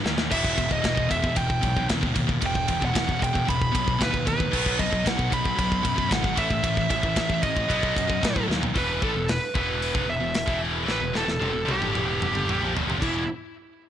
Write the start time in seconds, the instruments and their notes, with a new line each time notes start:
0.04 picked electric bass D#2, distorted electric guitar A2 E3, snare
0.18 distorted electric guitar A2 E3, snare
0.30 picked electric bass E1, distorted electric guitar E2 B2 E3, lead electric guitar E5, kick, splash, crash
0.45 kick
0.55 picked electric bass E1, distorted electric guitar E2 B2, kick, ride
0.69 distorted electric guitar E2 B2, lead electric guitar D#5, kick
0.82 picked electric bass E1, distorted electric guitar E2 B2, kick, snare, ride
0.95 distorted electric guitar E2 B2, kick
1.09 distorted electric guitar E2 B2, lead electric guitar E5, kick, ride
1.22 distorted electric guitar E2 B2, kick
1.35 picked electric bass E1, distorted electric guitar E2 B2, lead electric guitar G5, kick, ride
1.50 kick
1.61 picked electric bass B1, distorted electric guitar E2 B2, kick, ride
1.77 distorted electric guitar E2 B2, kick
1.88 picked electric bass D#2, distorted electric guitar E2 B2, kick, snare, ride
2.01 distorted electric guitar E2 B2, kick
2.14 picked electric bass D#2, distorted electric guitar E2 B2, kick, ride
2.27 distorted electric guitar E2 B2, kick
2.41 picked electric bass E1, distorted electric guitar E2 B2, kick, ride
2.46 lead electric guitar G5
2.55 kick
2.68 picked electric bass E1, distorted electric guitar E2 B2, kick, ride
2.81 distorted electric guitar E2 B2, kick
2.85 lead electric guitar F#5
2.94 picked electric bass E1, distorted electric guitar E2 B2, kick, snare, ride
3.07 distorted electric guitar E2 B2, kick
3.19 distorted electric guitar E2 B2, kick
3.24 lead electric guitar G5, ride
3.33 distorted electric guitar E2 B2, kick
3.45 picked electric bass E1, distorted electric guitar E2 B2, lead electric guitar B5, kick
3.50 ride
3.62 kick
3.72 picked electric bass B1, distorted electric guitar E2 B2, kick, ride
3.84 distorted electric guitar E2 B2, kick
3.98 picked electric bass D#2, distorted electric guitar E2 B2, kick, snare, ride
4.03 lead electric guitar B4
4.10 distorted electric guitar E2 B2, kick
4.25 picked electric bass D#2, distorted electric guitar E2 B2, lead electric guitar B4, kick, ride
4.37 distorted electric guitar E2 B2, kick
4.51 picked electric bass B1, distorted electric guitar B2 F#3 B3, kick, crash
4.66 kick
4.77 picked electric bass B1, distorted electric guitar B2 F#3, lead electric guitar D#5, kick, ride
4.90 distorted electric guitar B2 F#3, kick
5.05 picked electric bass B1, distorted electric guitar B2 F#3, lead electric guitar F#5, kick, snare, ride
5.17 distorted electric guitar B2 F#3, kick
5.30 distorted electric guitar B2 F#3, lead electric guitar B5, kick, ride
5.44 distorted electric guitar B2 F#3, kick
5.56 picked electric bass B1, distorted electric guitar B2 F#3, kick, ride
5.72 kick
5.83 picked electric bass F#2, distorted electric guitar B2 F#3, kick, ride
5.96 distorted electric guitar B2 F#3, kick
6.09 picked electric bass G#1, distorted electric guitar B2 F#3, lead electric guitar F#5, kick, snare, ride
6.23 distorted electric guitar B2 F#3, kick
6.35 picked electric bass A1, distorted electric guitar A2 E3 A3, lead electric guitar E5, kick, ride
6.49 distorted electric guitar A2 E3, kick
6.63 picked electric bass A1, distorted electric guitar A2 E3, kick, ride
6.77 kick
6.89 picked electric bass A1, distorted electric guitar A2 E3, lead electric guitar E5, kick, ride
7.02 distorted electric guitar A2 E3, kick
7.16 picked electric bass A1, distorted electric guitar A2 E3, kick, snare, ride
7.29 distorted electric guitar A2 E3, kick
7.43 distorted electric guitar A2 E3, lead electric guitar D#5, kick, ride
7.56 distorted electric guitar A2 E3, kick
7.68 picked electric bass B1, distorted electric guitar B2 F#3 B3, kick, ride
7.83 kick
7.96 picked electric bass F#2, distorted electric guitar B2 F#3, kick, ride
8.07 distorted electric guitar B2 F#3, kick
8.21 picked electric bass A2, distorted electric guitar B2 F#3, kick, snare, ride
8.35 distorted electric guitar B2 F#3, kick
8.48 picked electric bass D#2, distorted electric guitar B2 F#3, snare
8.61 distorted electric guitar B2 F#3, floor tom
8.74 picked electric bass E1, distorted electric guitar E2 B2 E3, lead electric guitar B4, kick, open hi-hat
9.00 picked electric bass A1, distorted electric guitar A2 E3, lead electric guitar A4, kick
9.14 picked electric bass E1, distorted electric guitar E2 B2
9.29 lead electric guitar B4, snare, open hi-hat
9.54 picked electric bass E1, distorted electric guitar E2 B2 E3, lead electric guitar B4, kick
9.82 open hi-hat
9.93 picked electric bass F1, distorted electric guitar F2 C3, kick
10.06 picked electric bass E1, distorted electric guitar E2 B2, lead electric guitar E5
10.20 picked electric bass E1, distorted electric guitar E2 B2
10.34 snare, open hi-hat
10.46 picked electric bass E1, distorted electric guitar E2 B2 E3, kick
10.85 picked electric bass A1, distorted electric guitar A2 E3, snare
10.91 lead electric guitar B4
11.01 picked electric bass E1, distorted electric guitar E2 B2
11.13 picked electric bass E1, distorted electric guitar E2 B2, lead electric guitar A4, snare
11.26 picked electric bass E1, distorted electric guitar E2 B2, snare
11.39 picked electric bass F1, distorted electric guitar F2 C3, high tom
11.53 picked electric bass E1, distorted electric guitar E2 B2
11.65 picked electric bass C2, distorted electric guitar C3 G3, high tom
11.71 lead electric guitar G4
11.77 picked electric bass G1, distorted electric guitar G2 D3
11.82 mid tom
11.92 picked electric bass E1, distorted electric guitar E2 B2 E3, mid tom
12.22 mid tom
12.32 picked electric bass G1, distorted electric guitar G2 D3, mid tom
12.47 picked electric bass A1, distorted electric guitar A2 E3, mid tom
12.60 picked electric bass A#1, distorted electric guitar A#2 F3
12.74 picked electric bass E1, distorted electric guitar E2 B2, floor tom
12.87 picked electric bass F1, distorted electric guitar F2 C3, floor tom
12.99 picked electric bass E1, distorted electric guitar E2 B2 E3, kick, crash
13.03 lead electric guitar E4